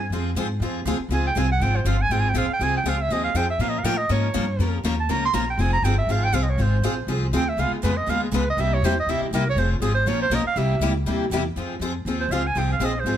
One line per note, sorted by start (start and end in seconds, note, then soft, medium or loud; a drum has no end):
0.00 0.12 G#5 loud
0.10 0.35 F2 medium
0.10 0.29 F3 medium
0.10 0.30 C4 medium
0.10 0.30 F4 medium
0.10 0.30 G#4 medium
0.35 0.59 G#2 medium
0.35 0.46 F3 medium
0.35 0.46 C4 medium
0.35 0.46 F4 medium
0.35 0.47 G#4 loud
0.60 0.85 F2 medium
0.60 0.79 F3 medium
0.60 0.79 C4 medium
0.60 0.79 F4 medium
0.60 0.80 G#4 medium
0.85 0.98 D2 loud
0.85 0.96 F3 loud
0.85 0.97 C4 loud
0.85 0.97 F4 loud
0.85 0.97 G#4 loud
0.99 muted upright bass stroke soft
1.09 1.34 C#2 medium
1.09 1.28 F3 medium
1.09 1.29 C4 medium
1.09 1.29 F4 medium
1.09 1.29 G#4 medium
1.14 1.25 G#5 medium
1.26 1.40 G5 loud
1.36 1.59 C2 medium
1.36 1.46 F3 medium
1.36 1.46 C4 medium
1.36 1.46 F4 medium
1.36 1.46 G#4 medium
1.36 1.51 G#5 medium
1.52 1.63 F#5 loud
1.60 1.84 G#1 loud
1.60 1.79 F3 medium
1.60 1.79 C4 medium
1.60 1.79 F4 medium
1.60 1.79 G#4 medium
1.60 1.78 G5 loud
1.76 1.88 C5 medium
1.85 2.09 G1 loud
1.85 1.95 F3 medium
1.85 1.96 C4 loud
1.85 1.96 F4 medium
1.85 1.96 G#4 loud
1.85 2.03 F5 medium
2.01 2.13 G#5 loud
2.09 2.33 G#1 medium
2.09 2.28 F3 medium
2.09 2.28 C4 medium
2.09 2.29 F4 medium
2.09 2.28 G#4 medium
2.09 2.22 G5 medium
2.20 2.31 G#5 loud
2.29 2.39 G5 medium
2.34 2.47 A#1 loud
2.34 2.45 F3 medium
2.34 2.45 C4 loud
2.34 2.45 F4 medium
2.34 2.45 G#4 loud
2.34 2.50 F5 medium
2.48 muted upright bass stroke soft
2.53 2.65 G5 loud
2.60 2.83 C2 medium
2.60 2.78 F3 medium
2.60 2.78 C4 medium
2.60 2.78 F4 medium
2.60 2.78 G#4 medium
2.60 2.75 G#5 loud
2.77 2.90 G5 medium
2.84 3.08 C#2 medium
2.84 2.95 F3 medium
2.84 2.95 C4 medium
2.84 2.95 F4 loud
2.84 2.95 G#4 loud
2.89 3.03 F5 medium
3.02 3.14 E5 loud
3.09 3.34 D#2 medium
3.09 3.28 F3 medium
3.09 3.28 C4 medium
3.09 3.29 F4 medium
3.09 3.29 G#4 medium
3.09 3.23 D#5 medium
3.24 3.38 F5 medium
3.34 3.58 F2 medium
3.34 3.45 F3 medium
3.34 3.45 C4 medium
3.34 3.45 F4 medium
3.34 3.45 G#4 loud
3.34 3.49 G5 medium
3.50 3.63 E5 medium
3.59 3.83 A#2 medium
3.59 3.77 F3 medium
3.59 3.78 A#3 medium
3.59 3.78 C#4 medium
3.59 3.78 F4 medium
3.59 3.78 A#4 medium
3.59 3.71 F5 medium
3.69 3.80 D#5 medium
3.79 3.86 F5 medium
3.83 4.08 A2 medium
3.83 3.94 F3 medium
3.83 3.95 A#3 loud
3.83 3.95 C#4 medium
3.83 3.95 F4 loud
3.83 3.95 A#4 loud
3.83 3.99 G5 loud
3.97 4.09 D#5 loud
4.09 4.34 G#2 medium
4.09 4.27 F3 medium
4.09 4.27 A#3 medium
4.09 4.27 C#4 medium
4.09 4.27 F4 medium
4.09 4.27 A#4 medium
4.09 4.81 C#5 medium
4.34 4.58 G2 loud
4.34 4.44 F3 medium
4.34 4.44 A#3 medium
4.34 4.44 C#4 loud
4.34 4.44 F4 loud
4.34 4.44 A#4 medium
4.59 4.83 F2 medium
4.59 4.77 F3 medium
4.59 4.77 A#3 medium
4.59 4.77 C#4 medium
4.59 4.77 F4 medium
4.59 4.78 A#4 medium
4.84 5.08 D#2 loud
4.84 4.94 F3 loud
4.84 4.94 A#3 loud
4.84 4.94 C#4 medium
4.84 4.94 F4 loud
4.84 4.95 A#4 loud
5.00 5.12 A5 medium
5.09 5.33 C#2 medium
5.09 5.27 F3 medium
5.09 5.27 A#3 medium
5.09 5.27 C#4 medium
5.09 5.27 F4 medium
5.09 5.27 A#4 medium
5.09 5.24 A#5 medium
5.25 5.36 C6 loud
5.33 5.57 A#1 medium
5.33 5.43 F3 medium
5.33 5.43 A#3 loud
5.33 5.44 C#4 medium
5.33 5.44 F4 loud
5.33 5.44 A#4 loud
5.33 5.48 A#5 medium
5.50 5.62 G5 medium
5.57 5.82 F1 medium
5.57 5.76 F3 medium
5.57 5.76 C4 medium
5.57 5.77 F4 medium
5.57 5.77 G#4 medium
5.57 5.72 G#5 medium
5.73 5.86 A#5 loud
5.82 6.06 G1 loud
5.82 5.94 F3 medium
5.82 5.94 C4 medium
5.82 5.94 F4 medium
5.82 5.94 G#4 loud
5.82 5.98 G5 medium
5.98 6.13 E5 loud
6.07 6.32 G#1 medium
6.07 6.26 F3 medium
6.07 6.27 C4 medium
6.07 6.27 F4 medium
6.07 6.27 G#4 medium
6.12 6.25 F5 medium
6.24 6.35 G5 loud
6.33 6.57 C2 medium
6.33 6.43 F3 medium
6.33 6.43 C4 loud
6.33 6.43 F4 loud
6.33 6.43 G#4 loud
6.33 6.44 F5 medium
6.43 6.51 D#5 medium
6.50 6.63 C#5 medium
6.58 6.82 G#1 loud
6.58 6.76 F3 medium
6.58 6.76 C4 medium
6.58 6.76 F4 medium
6.58 6.77 G#4 medium
6.58 7.09 C5 medium
6.82 7.06 A#1 medium
6.82 6.93 F3 medium
6.82 6.93 C4 loud
6.82 6.94 F4 loud
6.82 6.94 G#4 medium
7.07 7.31 C2 medium
7.07 7.26 F3 medium
7.07 7.26 C4 medium
7.07 7.26 F4 medium
7.07 7.26 G#4 medium
7.31 7.56 D2 medium
7.31 7.43 F3 medium
7.31 7.43 C4 loud
7.31 7.43 F4 medium
7.31 7.43 G#4 loud
7.35 7.50 G5 medium
7.49 7.61 E5 medium
7.57 7.70 C#2 loud
7.57 7.76 C#3 medium
7.57 7.76 G#3 medium
7.57 7.76 B3 medium
7.57 7.76 F4 medium
7.57 7.76 G#4 medium
7.57 7.72 F5 loud
7.70 7.84 G#4 soft
7.70 muted upright bass stroke soft
7.83 8.06 F2 loud
7.83 7.93 C#3 medium
7.83 7.93 G#3 loud
7.83 7.93 B3 medium
7.83 7.94 F4 medium
7.83 7.93 G#4 loud
7.83 7.99 B4 medium
7.97 8.11 D#5 medium
8.07 8.31 D#2 medium
8.07 8.26 C#3 medium
8.07 8.26 G#3 medium
8.07 8.26 B3 medium
8.07 8.26 F4 medium
8.07 8.26 G#4 medium
8.07 8.22 F5 loud
8.24 8.36 G#4 medium
8.32 8.56 C#2 medium
8.32 8.43 C#3 medium
8.32 8.43 G#3 medium
8.32 8.43 B3 medium
8.32 8.43 F4 loud
8.32 8.43 G#4 loud
8.32 8.47 B4 medium
8.50 8.62 D#5 loud
8.57 8.81 C2 medium
8.57 8.75 C3 medium
8.57 8.75 G3 medium
8.57 8.76 A#3 medium
8.57 8.76 E4 medium
8.57 8.76 G4 medium
8.57 8.75 E5 loud
8.74 8.86 C#5 medium
8.82 9.06 E2 medium
8.82 8.93 C3 medium
8.82 8.93 G3 medium
8.82 8.93 A#3 medium
8.82 8.93 E4 loud
8.82 8.94 G4 loud
8.82 8.97 C5 medium
8.99 9.11 D#5 loud
9.06 9.19 D#2 medium
9.06 9.26 C3 medium
9.06 9.26 G3 medium
9.06 9.26 A#3 medium
9.06 9.26 E4 medium
9.06 9.26 G4 medium
9.06 9.22 E5 loud
9.21 9.35 G4 medium
9.21 muted upright bass stroke soft
9.31 9.55 C2 medium
9.31 9.43 C3 medium
9.31 9.43 G3 loud
9.31 9.43 E4 loud
9.31 9.47 A#4 medium
9.35 9.43 A#3 loud
9.35 9.43 G4 loud
9.50 9.60 C#5 loud
9.56 9.80 F1 medium
9.56 9.75 F3 medium
9.56 9.75 C4 medium
9.56 9.75 F4 medium
9.56 9.75 G#4 medium
9.56 9.71 C5 loud
9.72 9.83 F4 soft
9.80 10.05 G#1 medium
9.80 9.92 F3 medium
9.80 9.92 C4 medium
9.80 9.92 F4 medium
9.80 9.94 G#4 medium
9.80 9.92 G#4 medium
9.94 10.09 C5 loud
10.06 10.29 A#1 medium
10.06 10.24 F3 medium
10.06 10.25 A#3 medium
10.06 10.25 C#4 medium
10.06 10.25 F4 medium
10.06 10.25 A#4 medium
10.06 10.21 C#5 loud
10.22 10.36 C5 loud
10.30 10.43 B1 medium
10.30 10.41 F3 medium
10.30 10.41 A#3 loud
10.30 10.42 C#4 medium
10.30 10.42 F4 medium
10.30 10.42 A#4 loud
10.34 10.46 D#5 medium
10.44 10.59 F5 loud
10.44 muted upright bass stroke soft
10.56 10.79 C2 loud
10.56 10.74 C3 medium
10.56 10.75 G3 medium
10.56 10.75 A#3 medium
10.56 10.75 E4 medium
10.56 10.75 G4 medium
10.56 10.82 E5 medium
10.79 11.05 C#2 loud
10.79 10.91 C3 medium
10.79 10.91 G3 medium
10.79 10.91 A#3 loud
10.79 10.92 E4 loud
10.79 10.92 G4 medium
11.06 11.29 D#2 medium
11.06 11.24 C3 medium
11.06 11.24 G3 medium
11.06 11.24 A#3 medium
11.06 11.24 E4 medium
11.06 11.24 G4 medium
11.30 11.55 E2 medium
11.30 11.42 C3 medium
11.30 11.42 G3 medium
11.30 11.42 A#3 loud
11.30 11.42 E4 loud
11.30 11.42 G4 loud
11.56 11.79 F2 medium
11.56 11.74 F3 medium
11.56 11.75 C4 medium
11.56 11.75 F4 medium
11.56 11.75 G#4 medium
11.80 12.04 F2 medium
11.80 11.91 F3 medium
11.80 11.91 C4 medium
11.80 11.92 F4 medium
11.80 11.92 G#4 loud
12.05 12.28 D#2 medium
12.05 12.25 F3 medium
12.05 12.25 C4 medium
12.05 12.25 F4 medium
12.05 12.25 G#4 medium
12.21 12.33 C5 medium
12.29 12.54 C#2 medium
12.29 12.42 F3 medium
12.29 12.42 F4 loud
12.29 12.48 F5 medium
12.33 12.42 C4 medium
12.33 12.42 G#4 medium
12.47 12.60 G#5 loud
12.56 12.79 C2 medium
12.56 12.74 F3 medium
12.56 12.74 C4 medium
12.56 12.74 F4 medium
12.56 12.75 G#4 medium
12.56 12.71 G5 medium
12.72 12.87 F5 medium
12.79 13.03 A#1 medium
12.79 12.91 F3 medium
12.79 12.91 C4 medium
12.79 12.91 F4 medium
12.79 12.91 G#4 loud
12.85 13.01 D#5 medium
13.00 13.17 C5 medium
13.04 13.17 G#1 medium
13.04 13.17 F3 medium
13.04 13.17 C4 medium
13.04 13.17 F4 medium
13.04 13.17 G#4 medium